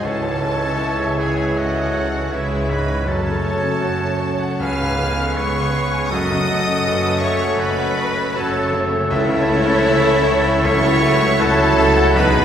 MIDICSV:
0, 0, Header, 1, 13, 480
1, 0, Start_track
1, 0, Tempo, 767263
1, 24, Time_signature, 4, 2, 24, 8
1, 985, Tempo, 747198
1, 2425, Tempo, 797872
1, 2905, Tempo, 748130
1, 6265, Tempo, 798935
1, 6745, Tempo, 757576
1, 7885, End_track
2, 0, Start_track
2, 0, Title_t, "Violin section"
2, 0, Program_c, 0, 48
2, 28, Note_on_c, 0, 81, 101
2, 747, Note_on_c, 0, 80, 82
2, 748, Note_off_c, 0, 81, 0
2, 981, Note_off_c, 0, 80, 0
2, 989, Note_on_c, 0, 78, 88
2, 1472, Note_off_c, 0, 78, 0
2, 1475, Note_on_c, 0, 76, 86
2, 1712, Note_off_c, 0, 76, 0
2, 1718, Note_on_c, 0, 83, 89
2, 1946, Note_on_c, 0, 81, 94
2, 1951, Note_off_c, 0, 83, 0
2, 2904, Note_off_c, 0, 81, 0
2, 2908, Note_on_c, 0, 89, 103
2, 3376, Note_off_c, 0, 89, 0
2, 3382, Note_on_c, 0, 85, 113
2, 3851, Note_off_c, 0, 85, 0
2, 3859, Note_on_c, 0, 87, 121
2, 4564, Note_on_c, 0, 85, 113
2, 4572, Note_off_c, 0, 87, 0
2, 4809, Note_off_c, 0, 85, 0
2, 4814, Note_on_c, 0, 83, 106
2, 5298, Note_off_c, 0, 83, 0
2, 5304, Note_on_c, 0, 81, 105
2, 5544, Note_off_c, 0, 81, 0
2, 5788, Note_on_c, 0, 76, 127
2, 6723, Note_off_c, 0, 76, 0
2, 6742, Note_on_c, 0, 85, 127
2, 7227, Note_off_c, 0, 85, 0
2, 7229, Note_on_c, 0, 81, 127
2, 7697, Note_on_c, 0, 83, 127
2, 7705, Note_off_c, 0, 81, 0
2, 7885, Note_off_c, 0, 83, 0
2, 7885, End_track
3, 0, Start_track
3, 0, Title_t, "Flute section"
3, 0, Program_c, 1, 73
3, 21, Note_on_c, 1, 73, 76
3, 744, Note_off_c, 1, 73, 0
3, 746, Note_on_c, 1, 71, 65
3, 976, Note_on_c, 1, 69, 71
3, 985, Note_off_c, 1, 71, 0
3, 1463, Note_on_c, 1, 68, 68
3, 1465, Note_off_c, 1, 69, 0
3, 1706, Note_off_c, 1, 68, 0
3, 1714, Note_on_c, 1, 75, 70
3, 1946, Note_on_c, 1, 73, 69
3, 1949, Note_off_c, 1, 75, 0
3, 2732, Note_off_c, 1, 73, 0
3, 2906, Note_on_c, 1, 80, 88
3, 3381, Note_on_c, 1, 77, 84
3, 3384, Note_off_c, 1, 80, 0
3, 3860, Note_off_c, 1, 77, 0
3, 3866, Note_on_c, 1, 78, 94
3, 4562, Note_off_c, 1, 78, 0
3, 4574, Note_on_c, 1, 76, 91
3, 4813, Note_off_c, 1, 76, 0
3, 4814, Note_on_c, 1, 75, 93
3, 5292, Note_on_c, 1, 73, 84
3, 5298, Note_off_c, 1, 75, 0
3, 5533, Note_off_c, 1, 73, 0
3, 5784, Note_on_c, 1, 69, 104
3, 6721, Note_off_c, 1, 69, 0
3, 6742, Note_on_c, 1, 76, 109
3, 7227, Note_off_c, 1, 76, 0
3, 7229, Note_on_c, 1, 73, 115
3, 7699, Note_on_c, 1, 75, 127
3, 7705, Note_off_c, 1, 73, 0
3, 7885, Note_off_c, 1, 75, 0
3, 7885, End_track
4, 0, Start_track
4, 0, Title_t, "Trumpet"
4, 0, Program_c, 2, 56
4, 24, Note_on_c, 2, 73, 69
4, 1462, Note_off_c, 2, 73, 0
4, 1466, Note_on_c, 2, 73, 61
4, 1936, Note_off_c, 2, 73, 0
4, 1945, Note_on_c, 2, 73, 74
4, 2719, Note_off_c, 2, 73, 0
4, 2899, Note_on_c, 2, 71, 72
4, 3355, Note_off_c, 2, 71, 0
4, 3384, Note_on_c, 2, 71, 68
4, 3862, Note_on_c, 2, 69, 78
4, 3872, Note_off_c, 2, 71, 0
4, 5298, Note_off_c, 2, 69, 0
4, 5301, Note_on_c, 2, 69, 77
4, 5776, Note_off_c, 2, 69, 0
4, 5790, Note_on_c, 2, 69, 98
4, 6729, Note_off_c, 2, 69, 0
4, 6748, Note_on_c, 2, 69, 94
4, 7057, Note_off_c, 2, 69, 0
4, 7229, Note_on_c, 2, 69, 99
4, 7707, Note_on_c, 2, 71, 109
4, 7716, Note_off_c, 2, 69, 0
4, 7885, Note_off_c, 2, 71, 0
4, 7885, End_track
5, 0, Start_track
5, 0, Title_t, "Viola section"
5, 0, Program_c, 3, 48
5, 22, Note_on_c, 3, 73, 62
5, 256, Note_off_c, 3, 73, 0
5, 261, Note_on_c, 3, 76, 65
5, 984, Note_off_c, 3, 76, 0
5, 985, Note_on_c, 3, 75, 70
5, 1218, Note_on_c, 3, 73, 61
5, 1228, Note_off_c, 3, 75, 0
5, 1461, Note_on_c, 3, 71, 69
5, 1465, Note_off_c, 3, 73, 0
5, 1933, Note_off_c, 3, 71, 0
5, 1939, Note_on_c, 3, 69, 68
5, 2421, Note_off_c, 3, 69, 0
5, 2423, Note_on_c, 3, 73, 71
5, 2904, Note_off_c, 3, 73, 0
5, 2906, Note_on_c, 3, 71, 82
5, 3143, Note_on_c, 3, 69, 70
5, 3147, Note_off_c, 3, 71, 0
5, 3381, Note_off_c, 3, 69, 0
5, 3383, Note_on_c, 3, 68, 80
5, 3859, Note_on_c, 3, 66, 81
5, 3861, Note_off_c, 3, 68, 0
5, 4325, Note_off_c, 3, 66, 0
5, 4334, Note_on_c, 3, 71, 82
5, 4572, Note_off_c, 3, 71, 0
5, 4577, Note_on_c, 3, 69, 78
5, 4811, Note_on_c, 3, 73, 91
5, 4815, Note_off_c, 3, 69, 0
5, 5054, Note_off_c, 3, 73, 0
5, 5058, Note_on_c, 3, 71, 80
5, 5295, Note_off_c, 3, 71, 0
5, 5301, Note_on_c, 3, 73, 92
5, 5778, Note_off_c, 3, 73, 0
5, 5786, Note_on_c, 3, 73, 117
5, 6727, Note_off_c, 3, 73, 0
5, 6742, Note_on_c, 3, 69, 100
5, 6988, Note_off_c, 3, 69, 0
5, 6988, Note_on_c, 3, 71, 99
5, 7226, Note_on_c, 3, 73, 96
5, 7227, Note_off_c, 3, 71, 0
5, 7465, Note_off_c, 3, 73, 0
5, 7465, Note_on_c, 3, 69, 91
5, 7704, Note_off_c, 3, 69, 0
5, 7704, Note_on_c, 3, 68, 102
5, 7885, Note_off_c, 3, 68, 0
5, 7885, End_track
6, 0, Start_track
6, 0, Title_t, "Oboe"
6, 0, Program_c, 4, 68
6, 31, Note_on_c, 4, 69, 73
6, 745, Note_on_c, 4, 68, 66
6, 754, Note_off_c, 4, 69, 0
6, 988, Note_on_c, 4, 66, 76
6, 997, Note_off_c, 4, 68, 0
6, 1469, Note_on_c, 4, 64, 65
6, 1479, Note_off_c, 4, 66, 0
6, 1708, Note_on_c, 4, 71, 70
6, 1717, Note_off_c, 4, 64, 0
6, 1950, Note_on_c, 4, 69, 72
6, 1960, Note_off_c, 4, 71, 0
6, 2737, Note_off_c, 4, 69, 0
6, 2897, Note_on_c, 4, 77, 89
6, 3386, Note_on_c, 4, 73, 89
6, 3396, Note_off_c, 4, 77, 0
6, 3861, Note_off_c, 4, 73, 0
6, 3865, Note_on_c, 4, 75, 98
6, 4590, Note_on_c, 4, 73, 87
6, 4599, Note_off_c, 4, 75, 0
6, 4820, Note_on_c, 4, 71, 101
6, 4829, Note_off_c, 4, 73, 0
6, 5307, Note_on_c, 4, 69, 92
6, 5317, Note_off_c, 4, 71, 0
6, 5545, Note_off_c, 4, 69, 0
6, 5788, Note_on_c, 4, 64, 105
6, 6749, Note_on_c, 4, 73, 117
6, 6759, Note_off_c, 4, 64, 0
6, 7226, Note_on_c, 4, 69, 108
6, 7235, Note_off_c, 4, 73, 0
6, 7704, Note_on_c, 4, 71, 127
6, 7714, Note_off_c, 4, 69, 0
6, 7885, Note_off_c, 4, 71, 0
6, 7885, End_track
7, 0, Start_track
7, 0, Title_t, "Violin section"
7, 0, Program_c, 5, 48
7, 16, Note_on_c, 5, 69, 89
7, 727, Note_off_c, 5, 69, 0
7, 741, Note_on_c, 5, 68, 73
7, 978, Note_off_c, 5, 68, 0
7, 983, Note_on_c, 5, 66, 68
7, 1459, Note_off_c, 5, 66, 0
7, 1471, Note_on_c, 5, 64, 73
7, 1711, Note_off_c, 5, 64, 0
7, 1715, Note_on_c, 5, 71, 78
7, 1940, Note_on_c, 5, 69, 78
7, 1950, Note_off_c, 5, 71, 0
7, 2883, Note_off_c, 5, 69, 0
7, 2909, Note_on_c, 5, 77, 90
7, 3384, Note_on_c, 5, 73, 92
7, 3386, Note_off_c, 5, 77, 0
7, 3861, Note_off_c, 5, 73, 0
7, 3862, Note_on_c, 5, 75, 99
7, 4559, Note_off_c, 5, 75, 0
7, 4572, Note_on_c, 5, 73, 93
7, 4808, Note_off_c, 5, 73, 0
7, 4813, Note_on_c, 5, 71, 109
7, 5298, Note_off_c, 5, 71, 0
7, 5303, Note_on_c, 5, 69, 94
7, 5543, Note_off_c, 5, 69, 0
7, 5783, Note_on_c, 5, 64, 116
7, 6720, Note_off_c, 5, 64, 0
7, 6753, Note_on_c, 5, 73, 115
7, 7224, Note_on_c, 5, 69, 120
7, 7232, Note_off_c, 5, 73, 0
7, 7701, Note_on_c, 5, 71, 127
7, 7703, Note_off_c, 5, 69, 0
7, 7885, Note_off_c, 5, 71, 0
7, 7885, End_track
8, 0, Start_track
8, 0, Title_t, "Grand piano"
8, 0, Program_c, 6, 0
8, 0, Control_c, 6, 64, 127
8, 19, Note_on_c, 6, 37, 70
8, 36, Control_c, 6, 64, 0
8, 121, Control_c, 6, 64, 127
8, 140, Note_on_c, 6, 44, 48
8, 261, Note_on_c, 6, 56, 58
8, 333, Note_off_c, 6, 44, 0
8, 382, Note_on_c, 6, 61, 53
8, 455, Note_off_c, 6, 56, 0
8, 491, Note_on_c, 6, 64, 57
8, 576, Note_off_c, 6, 61, 0
8, 618, Note_on_c, 6, 68, 55
8, 691, Note_off_c, 6, 64, 0
8, 742, Note_on_c, 6, 73, 57
8, 815, Note_off_c, 6, 68, 0
8, 856, Note_on_c, 6, 76, 56
8, 936, Note_off_c, 6, 73, 0
8, 980, Note_on_c, 6, 73, 58
8, 1053, Note_off_c, 6, 76, 0
8, 1095, Note_on_c, 6, 76, 59
8, 1177, Note_off_c, 6, 73, 0
8, 1218, Note_on_c, 6, 73, 59
8, 1295, Note_off_c, 6, 76, 0
8, 1334, Note_on_c, 6, 68, 57
8, 1417, Note_off_c, 6, 73, 0
8, 1457, Note_on_c, 6, 64, 58
8, 1534, Note_off_c, 6, 68, 0
8, 1580, Note_on_c, 6, 56, 62
8, 1656, Note_off_c, 6, 64, 0
8, 1701, Note_on_c, 6, 44, 56
8, 1776, Note_off_c, 6, 56, 0
8, 1822, Note_on_c, 6, 56, 54
8, 1896, Note_off_c, 6, 44, 0
8, 1919, Note_off_c, 6, 37, 0
8, 1937, Note_on_c, 6, 42, 78
8, 1944, Note_off_c, 6, 56, 0
8, 1959, Control_c, 6, 64, 0
8, 2054, Control_c, 6, 64, 127
8, 2059, Note_on_c, 6, 49, 57
8, 2180, Note_on_c, 6, 57, 62
8, 2252, Note_off_c, 6, 49, 0
8, 2303, Note_on_c, 6, 61, 62
8, 2374, Note_off_c, 6, 57, 0
8, 2420, Note_on_c, 6, 66, 66
8, 2494, Note_off_c, 6, 61, 0
8, 2535, Note_on_c, 6, 69, 65
8, 2613, Note_off_c, 6, 66, 0
8, 2656, Note_on_c, 6, 73, 61
8, 2734, Note_off_c, 6, 69, 0
8, 2777, Note_on_c, 6, 78, 70
8, 2854, Note_off_c, 6, 73, 0
8, 2876, Note_off_c, 6, 42, 0
8, 2896, Note_on_c, 6, 37, 77
8, 2900, Note_off_c, 6, 78, 0
8, 2918, Control_c, 6, 64, 0
8, 3019, Note_on_c, 6, 44, 58
8, 3034, Control_c, 6, 64, 127
8, 3142, Note_on_c, 6, 59, 61
8, 3214, Note_off_c, 6, 44, 0
8, 3265, Note_on_c, 6, 61, 59
8, 3334, Note_off_c, 6, 59, 0
8, 3394, Note_on_c, 6, 68, 72
8, 3455, Note_off_c, 6, 61, 0
8, 3506, Note_on_c, 6, 71, 69
8, 3579, Note_off_c, 6, 68, 0
8, 3629, Note_on_c, 6, 73, 70
8, 3696, Note_off_c, 6, 71, 0
8, 3749, Note_on_c, 6, 80, 76
8, 3817, Note_off_c, 6, 73, 0
8, 3831, Note_off_c, 6, 37, 0
8, 3865, Note_off_c, 6, 80, 0
8, 3871, Note_on_c, 6, 42, 84
8, 3872, Control_c, 6, 64, 0
8, 3976, Control_c, 6, 64, 127
8, 3990, Note_on_c, 6, 49, 66
8, 4112, Note_on_c, 6, 57, 70
8, 4175, Note_off_c, 6, 49, 0
8, 4226, Note_on_c, 6, 61, 67
8, 4295, Note_off_c, 6, 57, 0
8, 4347, Note_on_c, 6, 66, 68
8, 4411, Note_off_c, 6, 61, 0
8, 4464, Note_on_c, 6, 69, 69
8, 4531, Note_off_c, 6, 66, 0
8, 4587, Note_on_c, 6, 73, 72
8, 4650, Note_off_c, 6, 69, 0
8, 4698, Note_on_c, 6, 78, 82
8, 4772, Note_off_c, 6, 73, 0
8, 4823, Note_on_c, 6, 73, 77
8, 4888, Note_off_c, 6, 78, 0
8, 4936, Note_on_c, 6, 78, 72
8, 5012, Note_off_c, 6, 73, 0
8, 5060, Note_on_c, 6, 73, 75
8, 5129, Note_off_c, 6, 78, 0
8, 5184, Note_on_c, 6, 69, 67
8, 5252, Note_off_c, 6, 73, 0
8, 5307, Note_on_c, 6, 66, 87
8, 5374, Note_off_c, 6, 69, 0
8, 5422, Note_on_c, 6, 57, 75
8, 5497, Note_off_c, 6, 66, 0
8, 5538, Note_on_c, 6, 49, 69
8, 5615, Note_off_c, 6, 57, 0
8, 5664, Note_on_c, 6, 57, 73
8, 5734, Note_off_c, 6, 49, 0
8, 5763, Note_off_c, 6, 42, 0
8, 5784, Note_off_c, 6, 57, 0
8, 5787, Note_on_c, 6, 37, 102
8, 5796, Control_c, 6, 64, 0
8, 5904, Note_on_c, 6, 49, 81
8, 5912, Control_c, 6, 64, 127
8, 6031, Note_on_c, 6, 57, 88
8, 6095, Note_off_c, 6, 49, 0
8, 6139, Note_on_c, 6, 61, 80
8, 6220, Note_off_c, 6, 57, 0
8, 6256, Note_on_c, 6, 64, 82
8, 6332, Note_off_c, 6, 61, 0
8, 6377, Note_on_c, 6, 69, 85
8, 6449, Note_off_c, 6, 64, 0
8, 6496, Note_on_c, 6, 73, 95
8, 6574, Note_off_c, 6, 69, 0
8, 6616, Note_on_c, 6, 76, 97
8, 6694, Note_off_c, 6, 73, 0
8, 6722, Note_off_c, 6, 37, 0
8, 6741, Note_off_c, 6, 76, 0
8, 6742, Note_on_c, 6, 37, 104
8, 6755, Control_c, 6, 64, 0
8, 6856, Control_c, 6, 64, 127
8, 6862, Note_on_c, 6, 49, 76
8, 6990, Note_on_c, 6, 57, 76
8, 7058, Note_off_c, 6, 49, 0
8, 7107, Note_on_c, 6, 64, 86
8, 7181, Note_off_c, 6, 57, 0
8, 7224, Note_on_c, 6, 66, 94
8, 7298, Note_off_c, 6, 64, 0
8, 7338, Note_on_c, 6, 69, 83
8, 7417, Note_off_c, 6, 66, 0
8, 7462, Note_on_c, 6, 76, 94
8, 7533, Note_off_c, 6, 69, 0
8, 7577, Note_on_c, 6, 78, 94
8, 7655, Note_off_c, 6, 76, 0
8, 7678, Note_off_c, 6, 37, 0
8, 7699, Note_on_c, 6, 35, 111
8, 7701, Note_off_c, 6, 78, 0
8, 7715, Control_c, 6, 64, 0
8, 7818, Control_c, 6, 64, 127
8, 7826, Note_on_c, 6, 42, 86
8, 7885, Note_off_c, 6, 35, 0
8, 7885, Note_off_c, 6, 42, 0
8, 7885, End_track
9, 0, Start_track
9, 0, Title_t, "Clarinet"
9, 0, Program_c, 7, 71
9, 17, Note_on_c, 7, 61, 56
9, 3663, Note_off_c, 7, 61, 0
9, 3861, Note_on_c, 7, 61, 68
9, 5758, Note_off_c, 7, 61, 0
9, 5791, Note_on_c, 7, 64, 85
9, 6724, Note_off_c, 7, 64, 0
9, 6755, Note_on_c, 7, 64, 93
9, 7224, Note_off_c, 7, 64, 0
9, 7242, Note_on_c, 7, 64, 111
9, 7713, Note_on_c, 7, 63, 102
9, 7722, Note_off_c, 7, 64, 0
9, 7885, Note_off_c, 7, 63, 0
9, 7885, End_track
10, 0, Start_track
10, 0, Title_t, "French horn section"
10, 0, Program_c, 8, 60
10, 19, Note_on_c, 8, 56, 70
10, 19, Note_on_c, 8, 64, 65
10, 1441, Note_off_c, 8, 56, 0
10, 1454, Note_off_c, 8, 64, 0
10, 1462, Note_on_c, 8, 64, 63
10, 1464, Note_on_c, 8, 56, 64
10, 1701, Note_off_c, 8, 64, 0
10, 1706, Note_on_c, 8, 63, 57
10, 1935, Note_off_c, 8, 56, 0
10, 1939, Note_on_c, 8, 61, 75
10, 1943, Note_on_c, 8, 57, 70
10, 1945, Note_off_c, 8, 63, 0
10, 2791, Note_off_c, 8, 57, 0
10, 2791, Note_off_c, 8, 61, 0
10, 2893, Note_on_c, 8, 61, 71
10, 2895, Note_on_c, 8, 56, 73
10, 3368, Note_off_c, 8, 61, 0
10, 3371, Note_off_c, 8, 56, 0
10, 3379, Note_on_c, 8, 56, 76
10, 3381, Note_on_c, 8, 61, 69
10, 3847, Note_off_c, 8, 61, 0
10, 3849, Note_off_c, 8, 56, 0
10, 3854, Note_on_c, 8, 61, 79
10, 3857, Note_on_c, 8, 54, 83
10, 5269, Note_off_c, 8, 61, 0
10, 5294, Note_off_c, 8, 54, 0
10, 5301, Note_on_c, 8, 54, 90
10, 5306, Note_on_c, 8, 61, 81
10, 5776, Note_off_c, 8, 54, 0
10, 5778, Note_off_c, 8, 61, 0
10, 5794, Note_on_c, 8, 52, 94
10, 5794, Note_on_c, 8, 64, 87
10, 6740, Note_off_c, 8, 64, 0
10, 6748, Note_on_c, 8, 64, 91
10, 6749, Note_on_c, 8, 54, 93
10, 6750, Note_off_c, 8, 52, 0
10, 7216, Note_off_c, 8, 54, 0
10, 7216, Note_off_c, 8, 64, 0
10, 7223, Note_on_c, 8, 64, 98
10, 7224, Note_on_c, 8, 54, 100
10, 7693, Note_off_c, 8, 54, 0
10, 7693, Note_off_c, 8, 64, 0
10, 7708, Note_on_c, 8, 63, 102
10, 7710, Note_on_c, 8, 54, 114
10, 7885, Note_off_c, 8, 54, 0
10, 7885, Note_off_c, 8, 63, 0
10, 7885, End_track
11, 0, Start_track
11, 0, Title_t, "Bassoon"
11, 0, Program_c, 10, 70
11, 24, Note_on_c, 10, 52, 66
11, 1921, Note_off_c, 10, 52, 0
11, 1946, Note_on_c, 10, 54, 65
11, 2719, Note_off_c, 10, 54, 0
11, 2902, Note_on_c, 10, 59, 70
11, 3834, Note_off_c, 10, 59, 0
11, 3865, Note_on_c, 10, 57, 80
11, 5760, Note_off_c, 10, 57, 0
11, 5787, Note_on_c, 10, 57, 94
11, 6722, Note_off_c, 10, 57, 0
11, 6750, Note_on_c, 10, 57, 103
11, 7221, Note_off_c, 10, 57, 0
11, 7231, Note_on_c, 10, 57, 104
11, 7709, Note_on_c, 10, 59, 113
11, 7719, Note_off_c, 10, 57, 0
11, 7885, Note_off_c, 10, 59, 0
11, 7885, End_track
12, 0, Start_track
12, 0, Title_t, "Cello section"
12, 0, Program_c, 11, 48
12, 19, Note_on_c, 11, 49, 69
12, 444, Note_off_c, 11, 49, 0
12, 502, Note_on_c, 11, 49, 69
12, 928, Note_off_c, 11, 49, 0
12, 977, Note_on_c, 11, 49, 66
12, 1408, Note_off_c, 11, 49, 0
12, 1467, Note_on_c, 11, 49, 69
12, 1890, Note_off_c, 11, 49, 0
12, 1943, Note_on_c, 11, 42, 81
12, 2365, Note_off_c, 11, 42, 0
12, 2420, Note_on_c, 11, 42, 74
12, 2847, Note_off_c, 11, 42, 0
12, 2903, Note_on_c, 11, 49, 74
12, 3326, Note_off_c, 11, 49, 0
12, 3388, Note_on_c, 11, 49, 68
12, 3807, Note_off_c, 11, 49, 0
12, 3865, Note_on_c, 11, 42, 92
12, 4282, Note_off_c, 11, 42, 0
12, 4342, Note_on_c, 11, 42, 81
12, 4759, Note_off_c, 11, 42, 0
12, 4813, Note_on_c, 11, 42, 85
12, 5241, Note_off_c, 11, 42, 0
12, 5298, Note_on_c, 11, 42, 81
12, 5727, Note_off_c, 11, 42, 0
12, 5787, Note_on_c, 11, 49, 100
12, 6209, Note_off_c, 11, 49, 0
12, 6268, Note_on_c, 11, 49, 95
12, 6690, Note_off_c, 11, 49, 0
12, 6748, Note_on_c, 11, 49, 104
12, 7174, Note_off_c, 11, 49, 0
12, 7231, Note_on_c, 11, 49, 91
12, 7650, Note_off_c, 11, 49, 0
12, 7711, Note_on_c, 11, 47, 126
12, 7885, Note_off_c, 11, 47, 0
12, 7885, End_track
13, 0, Start_track
13, 0, Title_t, "Double bass section"
13, 0, Program_c, 12, 48
13, 26, Note_on_c, 12, 37, 68
13, 448, Note_off_c, 12, 37, 0
13, 505, Note_on_c, 12, 37, 64
13, 929, Note_off_c, 12, 37, 0
13, 985, Note_on_c, 12, 37, 60
13, 1413, Note_off_c, 12, 37, 0
13, 1469, Note_on_c, 12, 37, 74
13, 1891, Note_off_c, 12, 37, 0
13, 1948, Note_on_c, 12, 30, 75
13, 2368, Note_off_c, 12, 30, 0
13, 2423, Note_on_c, 12, 30, 67
13, 2848, Note_off_c, 12, 30, 0
13, 2907, Note_on_c, 12, 37, 76
13, 3328, Note_off_c, 12, 37, 0
13, 3391, Note_on_c, 12, 37, 77
13, 3809, Note_off_c, 12, 37, 0
13, 3865, Note_on_c, 12, 30, 80
13, 4282, Note_off_c, 12, 30, 0
13, 4340, Note_on_c, 12, 30, 83
13, 4758, Note_off_c, 12, 30, 0
13, 4816, Note_on_c, 12, 30, 81
13, 5243, Note_off_c, 12, 30, 0
13, 5303, Note_on_c, 12, 30, 99
13, 5729, Note_off_c, 12, 30, 0
13, 5789, Note_on_c, 12, 37, 103
13, 6210, Note_off_c, 12, 37, 0
13, 6270, Note_on_c, 12, 37, 95
13, 6691, Note_off_c, 12, 37, 0
13, 6750, Note_on_c, 12, 37, 95
13, 7175, Note_off_c, 12, 37, 0
13, 7228, Note_on_c, 12, 37, 104
13, 7648, Note_off_c, 12, 37, 0
13, 7707, Note_on_c, 12, 35, 103
13, 7885, Note_off_c, 12, 35, 0
13, 7885, End_track
0, 0, End_of_file